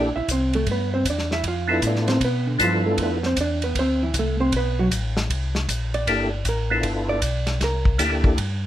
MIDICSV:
0, 0, Header, 1, 5, 480
1, 0, Start_track
1, 0, Tempo, 385852
1, 831, Time_signature, 4, 2, 24, 8
1, 10781, End_track
2, 0, Start_track
2, 0, Title_t, "Hollow-body jazz guitar"
2, 0, Program_c, 0, 26
2, 0, Note_on_c, 0, 62, 69
2, 0, Note_on_c, 0, 74, 88
2, 191, Note_off_c, 0, 74, 0
2, 196, Note_on_c, 0, 76, 104
2, 199, Note_off_c, 0, 62, 0
2, 210, Note_on_c, 0, 64, 82
2, 354, Note_off_c, 0, 76, 0
2, 361, Note_off_c, 0, 64, 0
2, 389, Note_on_c, 0, 72, 88
2, 400, Note_on_c, 0, 60, 70
2, 670, Note_off_c, 0, 72, 0
2, 676, Note_off_c, 0, 60, 0
2, 687, Note_on_c, 0, 69, 92
2, 693, Note_on_c, 0, 57, 74
2, 839, Note_off_c, 0, 69, 0
2, 842, Note_off_c, 0, 57, 0
2, 881, Note_on_c, 0, 59, 76
2, 889, Note_on_c, 0, 71, 96
2, 1156, Note_off_c, 0, 59, 0
2, 1160, Note_off_c, 0, 71, 0
2, 1165, Note_on_c, 0, 72, 87
2, 1175, Note_on_c, 0, 60, 71
2, 1318, Note_off_c, 0, 72, 0
2, 1323, Note_off_c, 0, 60, 0
2, 1365, Note_on_c, 0, 74, 88
2, 1373, Note_on_c, 0, 62, 62
2, 1638, Note_off_c, 0, 74, 0
2, 1642, Note_off_c, 0, 62, 0
2, 1649, Note_on_c, 0, 64, 72
2, 1651, Note_on_c, 0, 76, 93
2, 1799, Note_off_c, 0, 64, 0
2, 1801, Note_off_c, 0, 76, 0
2, 1838, Note_on_c, 0, 77, 101
2, 1840, Note_on_c, 0, 65, 86
2, 2113, Note_off_c, 0, 77, 0
2, 2115, Note_off_c, 0, 65, 0
2, 2134, Note_on_c, 0, 76, 90
2, 2142, Note_on_c, 0, 64, 73
2, 2281, Note_off_c, 0, 76, 0
2, 2285, Note_off_c, 0, 64, 0
2, 2323, Note_on_c, 0, 62, 70
2, 2325, Note_on_c, 0, 74, 91
2, 2587, Note_on_c, 0, 72, 89
2, 2592, Note_off_c, 0, 62, 0
2, 2595, Note_off_c, 0, 74, 0
2, 2597, Note_on_c, 0, 60, 72
2, 2747, Note_off_c, 0, 72, 0
2, 2752, Note_off_c, 0, 60, 0
2, 2793, Note_on_c, 0, 71, 93
2, 2801, Note_on_c, 0, 59, 74
2, 3071, Note_off_c, 0, 71, 0
2, 3073, Note_on_c, 0, 62, 52
2, 3075, Note_off_c, 0, 59, 0
2, 3079, Note_on_c, 0, 50, 42
2, 3231, Note_off_c, 0, 62, 0
2, 3232, Note_off_c, 0, 50, 0
2, 3272, Note_on_c, 0, 53, 62
2, 3277, Note_on_c, 0, 65, 78
2, 3551, Note_off_c, 0, 53, 0
2, 3552, Note_off_c, 0, 65, 0
2, 3561, Note_on_c, 0, 69, 88
2, 3571, Note_on_c, 0, 57, 64
2, 3714, Note_off_c, 0, 69, 0
2, 3719, Note_off_c, 0, 57, 0
2, 3766, Note_on_c, 0, 71, 86
2, 3774, Note_on_c, 0, 59, 65
2, 4039, Note_off_c, 0, 71, 0
2, 4040, Note_off_c, 0, 59, 0
2, 4053, Note_on_c, 0, 60, 70
2, 4057, Note_on_c, 0, 72, 92
2, 4201, Note_off_c, 0, 60, 0
2, 4201, Note_off_c, 0, 72, 0
2, 4237, Note_on_c, 0, 74, 99
2, 4240, Note_on_c, 0, 62, 85
2, 4512, Note_off_c, 0, 74, 0
2, 4515, Note_off_c, 0, 62, 0
2, 4525, Note_on_c, 0, 71, 83
2, 4530, Note_on_c, 0, 59, 70
2, 4677, Note_off_c, 0, 59, 0
2, 4677, Note_off_c, 0, 71, 0
2, 4717, Note_on_c, 0, 72, 108
2, 4730, Note_on_c, 0, 60, 87
2, 4993, Note_off_c, 0, 72, 0
2, 4999, Note_off_c, 0, 60, 0
2, 5011, Note_on_c, 0, 64, 63
2, 5022, Note_on_c, 0, 52, 51
2, 5159, Note_off_c, 0, 64, 0
2, 5165, Note_off_c, 0, 52, 0
2, 5213, Note_on_c, 0, 69, 81
2, 5214, Note_on_c, 0, 57, 68
2, 5470, Note_off_c, 0, 57, 0
2, 5475, Note_on_c, 0, 60, 81
2, 5480, Note_on_c, 0, 72, 105
2, 5481, Note_off_c, 0, 69, 0
2, 5632, Note_off_c, 0, 60, 0
2, 5632, Note_off_c, 0, 72, 0
2, 5679, Note_on_c, 0, 71, 94
2, 5691, Note_on_c, 0, 59, 74
2, 5954, Note_off_c, 0, 71, 0
2, 5961, Note_off_c, 0, 59, 0
2, 5963, Note_on_c, 0, 66, 91
2, 5969, Note_on_c, 0, 54, 69
2, 6057, Note_off_c, 0, 66, 0
2, 6062, Note_off_c, 0, 54, 0
2, 7395, Note_on_c, 0, 74, 95
2, 7992, Note_off_c, 0, 74, 0
2, 8070, Note_on_c, 0, 70, 67
2, 8498, Note_off_c, 0, 70, 0
2, 8825, Note_on_c, 0, 74, 105
2, 9428, Note_off_c, 0, 74, 0
2, 9503, Note_on_c, 0, 70, 90
2, 9935, Note_off_c, 0, 70, 0
2, 10781, End_track
3, 0, Start_track
3, 0, Title_t, "Tonewheel organ"
3, 0, Program_c, 1, 16
3, 0, Note_on_c, 1, 69, 74
3, 126, Note_off_c, 1, 69, 0
3, 2084, Note_on_c, 1, 59, 67
3, 2086, Note_on_c, 1, 62, 59
3, 2095, Note_on_c, 1, 64, 62
3, 2097, Note_on_c, 1, 65, 62
3, 2102, Note_on_c, 1, 69, 72
3, 2706, Note_off_c, 1, 59, 0
3, 2707, Note_off_c, 1, 62, 0
3, 2712, Note_off_c, 1, 64, 0
3, 2713, Note_off_c, 1, 65, 0
3, 2715, Note_off_c, 1, 69, 0
3, 3217, Note_on_c, 1, 62, 61
3, 3220, Note_on_c, 1, 59, 70
3, 3229, Note_on_c, 1, 65, 61
3, 3230, Note_on_c, 1, 64, 60
3, 3235, Note_on_c, 1, 69, 77
3, 3950, Note_off_c, 1, 62, 0
3, 3951, Note_off_c, 1, 59, 0
3, 3955, Note_off_c, 1, 65, 0
3, 3956, Note_off_c, 1, 64, 0
3, 3959, Note_off_c, 1, 69, 0
3, 7557, Note_on_c, 1, 58, 60
3, 7561, Note_on_c, 1, 64, 60
3, 7564, Note_on_c, 1, 62, 57
3, 7569, Note_on_c, 1, 67, 59
3, 7571, Note_on_c, 1, 69, 66
3, 7832, Note_off_c, 1, 58, 0
3, 7834, Note_off_c, 1, 64, 0
3, 7835, Note_off_c, 1, 62, 0
3, 7838, Note_off_c, 1, 67, 0
3, 7839, Note_off_c, 1, 69, 0
3, 8340, Note_on_c, 1, 59, 79
3, 8348, Note_on_c, 1, 64, 69
3, 8350, Note_on_c, 1, 62, 72
3, 8356, Note_on_c, 1, 65, 72
3, 8358, Note_on_c, 1, 69, 80
3, 8957, Note_off_c, 1, 59, 0
3, 8961, Note_off_c, 1, 64, 0
3, 8962, Note_off_c, 1, 62, 0
3, 8965, Note_off_c, 1, 65, 0
3, 8966, Note_off_c, 1, 69, 0
3, 9933, Note_on_c, 1, 58, 73
3, 9941, Note_on_c, 1, 62, 67
3, 9941, Note_on_c, 1, 64, 65
3, 9942, Note_on_c, 1, 67, 63
3, 9948, Note_on_c, 1, 69, 76
3, 10423, Note_off_c, 1, 58, 0
3, 10427, Note_off_c, 1, 62, 0
3, 10427, Note_off_c, 1, 64, 0
3, 10428, Note_off_c, 1, 67, 0
3, 10430, Note_off_c, 1, 69, 0
3, 10781, End_track
4, 0, Start_track
4, 0, Title_t, "Tonewheel organ"
4, 0, Program_c, 2, 16
4, 0, Note_on_c, 2, 34, 76
4, 160, Note_off_c, 2, 34, 0
4, 187, Note_on_c, 2, 34, 41
4, 270, Note_off_c, 2, 34, 0
4, 353, Note_on_c, 2, 36, 93
4, 817, Note_off_c, 2, 36, 0
4, 828, Note_on_c, 2, 43, 78
4, 1294, Note_off_c, 2, 43, 0
4, 1307, Note_on_c, 2, 40, 85
4, 1773, Note_off_c, 2, 40, 0
4, 1784, Note_on_c, 2, 41, 84
4, 2251, Note_off_c, 2, 41, 0
4, 2264, Note_on_c, 2, 45, 98
4, 2731, Note_off_c, 2, 45, 0
4, 2742, Note_on_c, 2, 47, 83
4, 3210, Note_off_c, 2, 47, 0
4, 3229, Note_on_c, 2, 43, 90
4, 3693, Note_off_c, 2, 43, 0
4, 3703, Note_on_c, 2, 41, 79
4, 4170, Note_off_c, 2, 41, 0
4, 4185, Note_on_c, 2, 40, 96
4, 4651, Note_off_c, 2, 40, 0
4, 4671, Note_on_c, 2, 38, 85
4, 5134, Note_off_c, 2, 38, 0
4, 5154, Note_on_c, 2, 36, 85
4, 5616, Note_off_c, 2, 36, 0
4, 5626, Note_on_c, 2, 35, 87
4, 6092, Note_off_c, 2, 35, 0
4, 6108, Note_on_c, 2, 33, 97
4, 6574, Note_off_c, 2, 33, 0
4, 6592, Note_on_c, 2, 36, 89
4, 7056, Note_off_c, 2, 36, 0
4, 7073, Note_on_c, 2, 34, 86
4, 7537, Note_off_c, 2, 34, 0
4, 7555, Note_on_c, 2, 31, 85
4, 8018, Note_off_c, 2, 31, 0
4, 8031, Note_on_c, 2, 33, 98
4, 8496, Note_off_c, 2, 33, 0
4, 8501, Note_on_c, 2, 31, 86
4, 8971, Note_off_c, 2, 31, 0
4, 8984, Note_on_c, 2, 35, 88
4, 9453, Note_off_c, 2, 35, 0
4, 9460, Note_on_c, 2, 36, 88
4, 9931, Note_off_c, 2, 36, 0
4, 9935, Note_on_c, 2, 38, 97
4, 10409, Note_off_c, 2, 38, 0
4, 10420, Note_on_c, 2, 43, 85
4, 10781, Note_off_c, 2, 43, 0
4, 10781, End_track
5, 0, Start_track
5, 0, Title_t, "Drums"
5, 353, Note_on_c, 9, 36, 19
5, 354, Note_on_c, 9, 44, 61
5, 354, Note_on_c, 9, 51, 64
5, 478, Note_off_c, 9, 36, 0
5, 479, Note_off_c, 9, 44, 0
5, 479, Note_off_c, 9, 51, 0
5, 663, Note_on_c, 9, 51, 48
5, 788, Note_off_c, 9, 51, 0
5, 828, Note_on_c, 9, 51, 61
5, 830, Note_on_c, 9, 36, 27
5, 952, Note_off_c, 9, 51, 0
5, 955, Note_off_c, 9, 36, 0
5, 1310, Note_on_c, 9, 36, 26
5, 1312, Note_on_c, 9, 44, 55
5, 1312, Note_on_c, 9, 51, 65
5, 1434, Note_off_c, 9, 36, 0
5, 1436, Note_off_c, 9, 44, 0
5, 1436, Note_off_c, 9, 51, 0
5, 1473, Note_on_c, 9, 38, 31
5, 1597, Note_off_c, 9, 38, 0
5, 1632, Note_on_c, 9, 38, 43
5, 1756, Note_off_c, 9, 38, 0
5, 1787, Note_on_c, 9, 36, 19
5, 1788, Note_on_c, 9, 51, 67
5, 1912, Note_off_c, 9, 36, 0
5, 1912, Note_off_c, 9, 51, 0
5, 2265, Note_on_c, 9, 44, 53
5, 2265, Note_on_c, 9, 51, 65
5, 2266, Note_on_c, 9, 36, 22
5, 2390, Note_off_c, 9, 44, 0
5, 2390, Note_off_c, 9, 51, 0
5, 2391, Note_off_c, 9, 36, 0
5, 2434, Note_on_c, 9, 38, 27
5, 2559, Note_off_c, 9, 38, 0
5, 2583, Note_on_c, 9, 51, 51
5, 2592, Note_on_c, 9, 38, 45
5, 2707, Note_off_c, 9, 51, 0
5, 2716, Note_off_c, 9, 38, 0
5, 2746, Note_on_c, 9, 36, 27
5, 2749, Note_on_c, 9, 51, 65
5, 2870, Note_off_c, 9, 36, 0
5, 2873, Note_off_c, 9, 51, 0
5, 3226, Note_on_c, 9, 36, 20
5, 3228, Note_on_c, 9, 44, 64
5, 3228, Note_on_c, 9, 51, 69
5, 3350, Note_off_c, 9, 36, 0
5, 3353, Note_off_c, 9, 44, 0
5, 3353, Note_off_c, 9, 51, 0
5, 3704, Note_on_c, 9, 51, 67
5, 3705, Note_on_c, 9, 36, 24
5, 3828, Note_off_c, 9, 51, 0
5, 3829, Note_off_c, 9, 36, 0
5, 4022, Note_on_c, 9, 38, 35
5, 4147, Note_off_c, 9, 38, 0
5, 4187, Note_on_c, 9, 36, 22
5, 4187, Note_on_c, 9, 44, 57
5, 4187, Note_on_c, 9, 51, 71
5, 4311, Note_off_c, 9, 36, 0
5, 4311, Note_off_c, 9, 44, 0
5, 4311, Note_off_c, 9, 51, 0
5, 4502, Note_on_c, 9, 51, 50
5, 4626, Note_off_c, 9, 51, 0
5, 4668, Note_on_c, 9, 36, 27
5, 4669, Note_on_c, 9, 51, 66
5, 4793, Note_off_c, 9, 36, 0
5, 4794, Note_off_c, 9, 51, 0
5, 5148, Note_on_c, 9, 36, 26
5, 5150, Note_on_c, 9, 44, 59
5, 5150, Note_on_c, 9, 51, 76
5, 5273, Note_off_c, 9, 36, 0
5, 5274, Note_off_c, 9, 44, 0
5, 5274, Note_off_c, 9, 51, 0
5, 5627, Note_on_c, 9, 51, 72
5, 5629, Note_on_c, 9, 36, 28
5, 5752, Note_off_c, 9, 51, 0
5, 5753, Note_off_c, 9, 36, 0
5, 6111, Note_on_c, 9, 36, 17
5, 6113, Note_on_c, 9, 44, 58
5, 6113, Note_on_c, 9, 51, 76
5, 6235, Note_off_c, 9, 36, 0
5, 6237, Note_off_c, 9, 44, 0
5, 6237, Note_off_c, 9, 51, 0
5, 6427, Note_on_c, 9, 38, 58
5, 6552, Note_off_c, 9, 38, 0
5, 6594, Note_on_c, 9, 36, 23
5, 6598, Note_on_c, 9, 51, 68
5, 6718, Note_off_c, 9, 36, 0
5, 6722, Note_off_c, 9, 51, 0
5, 6903, Note_on_c, 9, 38, 53
5, 7027, Note_off_c, 9, 38, 0
5, 7074, Note_on_c, 9, 36, 27
5, 7075, Note_on_c, 9, 44, 65
5, 7075, Note_on_c, 9, 51, 68
5, 7198, Note_off_c, 9, 36, 0
5, 7200, Note_off_c, 9, 44, 0
5, 7200, Note_off_c, 9, 51, 0
5, 7390, Note_on_c, 9, 51, 46
5, 7514, Note_off_c, 9, 51, 0
5, 7552, Note_on_c, 9, 36, 20
5, 7556, Note_on_c, 9, 51, 64
5, 7676, Note_off_c, 9, 36, 0
5, 7680, Note_off_c, 9, 51, 0
5, 8023, Note_on_c, 9, 44, 56
5, 8023, Note_on_c, 9, 51, 66
5, 8027, Note_on_c, 9, 36, 26
5, 8147, Note_off_c, 9, 44, 0
5, 8147, Note_off_c, 9, 51, 0
5, 8151, Note_off_c, 9, 36, 0
5, 8498, Note_on_c, 9, 51, 66
5, 8504, Note_on_c, 9, 36, 22
5, 8623, Note_off_c, 9, 51, 0
5, 8628, Note_off_c, 9, 36, 0
5, 8979, Note_on_c, 9, 44, 58
5, 8979, Note_on_c, 9, 51, 73
5, 8982, Note_on_c, 9, 36, 23
5, 9103, Note_off_c, 9, 44, 0
5, 9103, Note_off_c, 9, 51, 0
5, 9106, Note_off_c, 9, 36, 0
5, 9288, Note_on_c, 9, 38, 43
5, 9288, Note_on_c, 9, 51, 49
5, 9413, Note_off_c, 9, 38, 0
5, 9413, Note_off_c, 9, 51, 0
5, 9462, Note_on_c, 9, 36, 23
5, 9464, Note_on_c, 9, 38, 40
5, 9464, Note_on_c, 9, 51, 60
5, 9586, Note_off_c, 9, 36, 0
5, 9589, Note_off_c, 9, 38, 0
5, 9589, Note_off_c, 9, 51, 0
5, 9770, Note_on_c, 9, 36, 60
5, 9894, Note_off_c, 9, 36, 0
5, 9939, Note_on_c, 9, 36, 19
5, 9940, Note_on_c, 9, 44, 54
5, 9940, Note_on_c, 9, 51, 73
5, 10063, Note_off_c, 9, 36, 0
5, 10064, Note_off_c, 9, 44, 0
5, 10064, Note_off_c, 9, 51, 0
5, 10250, Note_on_c, 9, 36, 64
5, 10374, Note_off_c, 9, 36, 0
5, 10420, Note_on_c, 9, 36, 23
5, 10423, Note_on_c, 9, 51, 71
5, 10544, Note_off_c, 9, 36, 0
5, 10547, Note_off_c, 9, 51, 0
5, 10781, End_track
0, 0, End_of_file